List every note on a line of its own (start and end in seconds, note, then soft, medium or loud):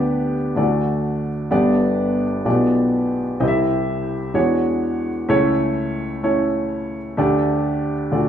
0.00 0.53 D2 medium
0.00 0.53 D3 medium
0.00 0.35 B3 medium
0.00 0.35 D4 medium
0.00 0.35 G4 medium
0.00 0.36 D5 medium
0.56 1.47 D2 medium
0.56 1.47 D3 medium
0.56 1.29 A3 medium
0.56 1.29 D4 medium
0.56 0.63 E4 soft
0.56 1.30 D5 medium
0.63 1.33 F#4 medium
1.51 2.42 G1 medium
1.51 2.42 G2 medium
1.51 2.24 B3 medium
1.51 2.24 D4 medium
1.51 2.24 G4 medium
1.51 2.24 D5 medium
2.45 3.36 B1 medium
2.45 3.36 B2 medium
2.45 2.52 A3 soft
2.45 3.18 F4 medium
2.45 3.19 G4 medium
2.45 3.19 D5 medium
2.52 3.22 B3 medium
3.40 4.31 C2 medium
3.40 4.31 C3 medium
3.40 4.13 C4 medium
3.40 4.13 E4 medium
3.40 4.13 G4 medium
3.40 3.47 D#5 medium
3.48 4.17 E5 medium
4.34 5.25 E2 medium
4.34 5.25 E3 medium
4.34 5.07 G#3 medium
4.34 5.07 D4 medium
4.34 5.08 F#4 medium
4.34 5.08 C#5 medium
5.29 7.14 C#2 medium
5.29 7.14 C#3 medium
5.29 6.02 A3 medium
5.29 6.02 C#4 medium
5.29 6.02 E4 medium
5.29 6.02 C#5 medium
6.23 6.96 A3 medium
6.23 6.96 C#4 medium
6.23 6.97 E4 medium
6.23 6.97 C#5 medium
7.17 8.09 D2 medium
7.17 8.09 D3 medium
7.17 7.90 A3 medium
7.17 7.91 D4 medium
7.17 7.91 G4 medium
7.17 7.91 D5 medium
8.11 8.29 D2 medium
8.11 8.29 D3 medium
8.11 8.29 A3 medium
8.11 8.29 D4 medium
8.11 8.19 F4 soft
8.11 8.29 D5 medium
8.19 8.29 F#4 medium